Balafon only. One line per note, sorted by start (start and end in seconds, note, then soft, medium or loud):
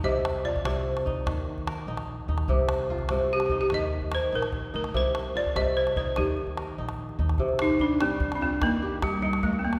0.04 0.46 D#5 medium
0.45 0.66 D5 medium
0.67 1.84 C5 medium
3.33 3.45 G4 medium
3.46 3.59 G4 medium
3.61 3.73 G4 medium
3.74 4.15 D#5 medium
4.15 4.33 C5 medium
4.35 4.74 A#4 medium
4.76 4.84 A#4 medium
4.97 5.34 C5 medium
5.37 5.55 D5 medium
5.57 5.77 D#5 medium
5.77 5.96 C5 medium
5.97 6.18 C5 medium
6.17 6.95 G4 medium
7.62 7.80 D#4 loud
7.81 8.00 D4 medium
8.02 8.38 C4 medium
8.35 8.41 D4 medium
8.42 8.63 C4 medium
8.63 9.05 A#3 medium
9.04 9.21 G3 medium
9.22 9.44 G3 medium
9.43 9.58 A3 medium
9.59 9.64 C4 medium
9.65 9.79 A#3 medium